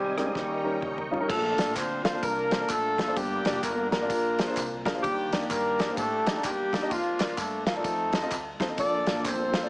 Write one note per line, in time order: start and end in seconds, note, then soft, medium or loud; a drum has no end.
0.00 0.28 C2 medium
0.00 0.13 D#3 medium
0.00 0.16 G3 medium
0.00 0.18 G3 medium
0.00 0.32 G#3 medium
0.00 0.32 C4 medium
0.00 0.33 C4 medium
0.00 0.16 G4 medium
0.00 0.34 C5 medium
0.00 0.35 D#5 medium
0.00 1.27 D#5 medium
0.00 0.31 G#5 medium
0.00 0.32 G#5 medium
0.00 0.35 D#6 medium
0.17 1.08 G3 medium
0.17 0.22 G#3 medium
0.17 1.08 A#3 medium
0.17 0.22 C4 medium
0.17 1.08 C#4 medium
0.17 0.22 D#4 medium
0.17 1.08 G4 medium
0.17 0.22 A#4 medium
0.17 cross-stick medium
0.17 closed hi-hat medium
0.26 0.35 G#3 soft
0.26 0.35 C4 soft
0.26 0.35 D#4 soft
0.26 0.35 C5 medium
0.34 0.75 D#2 medium
0.34 1.07 D#3 medium
0.34 1.28 A#4 medium
0.34 1.28 C#5 medium
0.34 1.29 D#5 medium
0.34 1.28 G5 medium
0.34 1.28 A#5 medium
0.34 1.29 C#6 medium
0.34 kick loud
0.34 snare soft
0.64 0.74 G3 medium
0.64 0.74 C#4 medium
0.64 0.74 D#4 medium
0.64 0.74 A#4 medium
0.82 1.11 C#2 medium
0.82 kick medium
0.82 mid tom medium
0.98 floor tom medium
1.11 1.27 A#1 medium
1.11 1.16 G3 medium
1.11 1.16 C#4 medium
1.11 1.16 D#4 medium
1.11 1.16 F4 medium
1.11 floor tom medium
1.20 1.29 G3 medium
1.20 1.29 C#4 medium
1.20 1.29 D#4 medium
1.20 1.29 A#4 medium
1.29 1.54 A#1 loud
1.29 2.01 A#2 medium
1.29 1.73 A3 medium
1.29 2.19 D4 medium
1.29 2.19 F4 medium
1.29 1.73 A4 loud
1.29 kick loud
1.29 crash loud
1.29 tambourine medium
1.58 1.74 A1 loud
1.58 1.68 A#3 medium
1.58 1.68 D4 medium
1.58 1.68 F4 medium
1.58 1.68 A4 medium
1.58 1.68 D5 medium
1.58 snare loud
1.58 ride medium
1.58 tambourine medium
1.76 2.16 D2 loud
1.76 2.04 C4 medium
1.76 2.04 C5 loud
1.76 kick medium
1.76 clap loud
1.76 ride medium
1.76 tambourine loud
2.05 2.10 A#3 medium
2.05 2.22 C4 medium
2.05 2.10 D4 medium
2.05 2.10 F4 medium
2.05 2.10 A4 medium
2.05 2.22 C5 loud
2.05 2.10 F5 medium
2.05 snare loud
2.05 ride medium
2.05 tambourine medium
2.14 2.24 A#3 medium
2.14 2.24 D4 medium
2.14 2.24 F4 medium
2.14 2.24 A4 medium
2.14 2.24 D5 medium
2.23 2.63 C2 loud
2.23 2.70 A#3 loud
2.23 2.69 D4 medium
2.23 2.69 F4 medium
2.23 2.70 A#4 loud
2.23 kick loud
2.23 ride medium
2.23 tambourine medium
2.51 2.57 A#3 medium
2.51 2.57 D4 medium
2.51 2.57 F4 medium
2.51 2.57 A4 medium
2.51 2.57 C5 medium
2.51 snare loud
2.51 ride medium
2.51 tambourine medium
2.60 2.70 A#3 medium
2.60 2.70 D4 medium
2.60 2.70 F4 medium
2.60 2.71 A4 medium
2.60 2.71 D5 medium
2.70 3.10 A#1 medium
2.70 3.17 A3 medium
2.70 3.14 D4 medium
2.70 3.14 F4 medium
2.70 3.17 A4 loud
2.70 kick loud
2.70 clap loud
2.70 ride medium
2.70 tambourine loud
2.98 3.03 A#3 medium
2.98 3.04 D4 medium
2.98 3.04 F4 medium
2.98 3.04 A4 medium
2.98 3.04 F5 medium
2.98 kick loud
2.98 snare loud
2.98 ride medium
2.98 tambourine medium
3.08 3.17 A#3 medium
3.08 3.17 D4 medium
3.08 3.17 F4 medium
3.08 3.17 A4 medium
3.08 3.17 C5 medium
3.16 3.41 G1 loud
3.16 3.89 G2 medium
3.16 3.63 G3 loud
3.16 3.63 A#3 medium
3.16 3.91 D4 medium
3.16 3.63 G4 loud
3.16 kick loud
3.16 ride medium
3.16 tambourine medium
3.45 3.61 F1 loud
3.45 3.55 A#3 medium
3.45 3.55 D4 medium
3.45 3.55 F4 medium
3.45 3.55 G4 medium
3.45 3.55 D5 medium
3.45 snare loud
3.45 ride medium
3.45 tambourine medium
3.63 4.10 G1 loud
3.63 3.91 A#3 medium
3.63 3.91 A#4 loud
3.63 kick medium
3.63 clap medium
3.63 ride medium
3.63 tambourine loud
3.92 4.82 A#3 loud
3.92 3.97 A#3 medium
3.92 4.82 D4 medium
3.92 3.97 D4 medium
3.92 4.82 F4 medium
3.92 3.97 F4 medium
3.92 3.97 G4 medium
3.92 4.82 A#4 loud
3.92 3.97 A#4 medium
3.92 snare loud
3.92 ride medium
3.92 tambourine medium
4.01 4.10 A#3 medium
4.01 4.10 D4 medium
4.01 4.10 F4 medium
4.01 4.10 G4 medium
4.01 4.10 D5 medium
4.10 4.50 A#1 loud
4.10 4.82 A#2 medium
4.10 kick loud
4.10 ride medium
4.10 tambourine medium
4.38 4.44 A#3 medium
4.38 4.44 D4 medium
4.38 4.44 F4 medium
4.38 4.44 G#4 medium
4.38 4.44 C5 medium
4.38 snare loud
4.38 ride medium
4.38 tambourine medium
4.47 4.58 A#3 medium
4.47 4.58 D4 medium
4.47 4.58 F4 medium
4.47 4.58 G#4 medium
4.47 4.58 C5 medium
4.57 4.82 C2 medium
4.57 kick medium
4.57 clap loud
4.57 ride medium
4.57 tambourine loud
4.85 4.91 A#3 medium
4.85 4.91 D4 medium
4.85 4.91 F4 medium
4.85 4.91 G#4 medium
4.85 4.91 A#4 loud
4.85 kick loud
4.85 snare loud
4.85 ride medium
4.85 tambourine medium
4.94 5.03 A#3 medium
4.94 5.03 D4 medium
4.94 5.04 F4 medium
4.94 5.04 G#4 medium
4.94 5.04 C5 medium
5.03 5.29 D#2 loud
5.03 5.75 D#3 medium
5.03 5.47 G3 loud
5.03 5.50 A#3 medium
5.03 5.49 D4 medium
5.03 5.47 G4 loud
5.03 kick loud
5.03 ride medium
5.03 tambourine medium
5.32 5.48 F2 loud
5.32 5.42 A#3 medium
5.32 5.42 D4 medium
5.32 5.42 D#4 medium
5.32 5.42 G4 medium
5.32 5.42 D5 medium
5.32 snare loud
5.32 ride medium
5.32 tambourine medium
5.50 5.90 G2 loud
5.50 5.97 A#3 loud
5.50 5.96 D4 medium
5.50 6.40 G4 medium
5.50 5.97 A#4 loud
5.50 kick medium
5.50 clap loud
5.50 ride medium
5.50 tambourine loud
5.79 5.84 A#3 medium
5.79 5.84 D4 medium
5.79 5.84 D#4 medium
5.79 5.84 G4 medium
5.79 5.84 D5 medium
5.79 snare loud
5.79 ride medium
5.79 tambourine medium
5.88 5.98 A#3 medium
5.88 5.99 D4 medium
5.88 5.98 D#4 medium
5.88 5.99 G4 medium
5.88 5.99 C5 medium
5.97 6.37 A2 loud
5.97 6.41 A3 loud
5.97 6.44 D4 medium
5.97 6.41 A4 loud
5.97 kick loud
5.97 ride medium
5.97 tambourine medium
6.26 6.31 A#3 medium
6.26 6.31 D4 medium
6.26 6.31 D#4 medium
6.26 6.31 G4 medium
6.26 6.31 D#5 medium
6.26 snare loud
6.26 ride medium
6.26 tambourine medium
6.35 6.45 A#3 medium
6.35 6.45 D4 medium
6.35 6.45 D#4 medium
6.35 6.45 G4 medium
6.35 6.45 D5 medium
6.44 6.84 E2 medium
6.44 6.91 G3 medium
6.44 6.88 A#3 medium
6.44 6.88 D4 medium
6.44 6.91 G4 loud
6.44 kick loud
6.44 clap loud
6.44 ride medium
6.44 tambourine loud
6.73 6.78 A#3 medium
6.73 6.78 D4 medium
6.73 6.78 D#4 medium
6.73 6.78 G4 medium
6.73 6.78 D5 medium
6.73 kick medium
6.73 snare loud
6.73 ride medium
6.73 tambourine medium
6.82 6.91 A#3 medium
6.82 6.91 D4 medium
6.82 6.91 D#4 medium
6.82 6.91 G4 medium
6.82 6.91 D#5 medium
6.91 7.20 F2 loud
6.91 7.38 F3 loud
6.91 7.81 A#3 medium
6.91 7.81 D4 medium
6.91 7.38 F4 loud
6.91 kick loud
6.91 ride medium
6.91 tambourine medium
7.20 7.35 D2 loud
7.20 7.30 F4 medium
7.20 7.30 A#4 medium
7.20 7.30 D5 medium
7.20 snare loud
7.20 clap medium
7.20 ride medium
7.20 tambourine medium
7.38 7.78 G2 medium
7.38 7.66 A3 medium
7.38 7.66 A4 loud
7.38 kick medium
7.38 clap medium
7.38 ride medium
7.38 tambourine loud
7.67 8.56 A3 medium
7.67 8.56 C4 medium
7.67 8.57 D#4 medium
7.67 7.71 F4 medium
7.67 8.56 A4 loud
7.67 7.72 A#4 medium
7.67 7.72 F5 medium
7.67 snare loud
7.67 ride medium
7.67 tambourine medium
7.76 7.85 F4 medium
7.76 7.85 A#4 medium
7.76 7.85 D5 medium
7.84 8.24 F2 loud
7.84 kick loud
7.84 ride medium
7.84 tambourine medium
8.12 8.18 C4 medium
8.12 8.18 D#4 medium
8.12 8.18 F4 medium
8.12 8.18 A4 medium
8.12 8.18 D#5 medium
8.12 snare loud
8.12 ride medium
8.12 tambourine medium
8.22 8.32 C4 medium
8.22 8.32 D#4 medium
8.22 8.32 F4 medium
8.22 8.32 A4 medium
8.22 8.32 D#5 medium
8.31 8.56 D2 loud
8.31 kick loud
8.31 clap loud
8.31 ride medium
8.31 tambourine loud
8.60 8.75 D#2 medium
8.60 8.65 C4 medium
8.60 8.65 D#4 medium
8.60 8.65 F4 medium
8.60 8.65 A4 medium
8.60 8.65 C5 loud
8.60 kick loud
8.60 snare loud
8.60 ride medium
8.60 tambourine medium
8.69 8.78 C4 medium
8.69 8.78 D#4 medium
8.69 8.78 F4 medium
8.69 8.78 A4 medium
8.69 8.78 D#5 medium
8.78 9.03 A#1 medium
8.78 9.50 A#2 medium
8.78 9.69 F3 medium
8.78 9.69 A#3 medium
8.78 9.69 D4 medium
8.78 9.22 D4 loud
8.78 9.25 F4 medium
8.78 9.69 A4 medium
8.78 9.25 A4 medium
8.78 9.22 D5 loud
8.78 kick loud
8.78 ride medium
8.78 tambourine medium
9.06 9.22 A1 medium
9.06 9.16 A#3 medium
9.06 9.16 D4 medium
9.06 9.17 F4 medium
9.06 9.17 A4 medium
9.06 9.17 D5 medium
9.06 snare loud
9.06 ride medium
9.06 tambourine medium
9.25 9.65 G1 medium
9.25 9.69 C4 medium
9.25 9.69 F4 medium
9.25 9.69 A4 medium
9.25 9.69 C5 loud
9.25 kick medium
9.25 clap loud
9.25 ride medium
9.25 tambourine loud
9.54 9.59 A#3 medium
9.54 9.59 D4 medium
9.54 9.59 F4 medium
9.54 9.59 A4 medium
9.54 9.59 C5 medium
9.54 snare loud
9.54 ride medium
9.54 tambourine medium
9.63 9.69 A#3 medium
9.63 9.69 D4 medium
9.63 9.69 F4 medium
9.63 9.69 A4 medium
9.63 9.69 D5 medium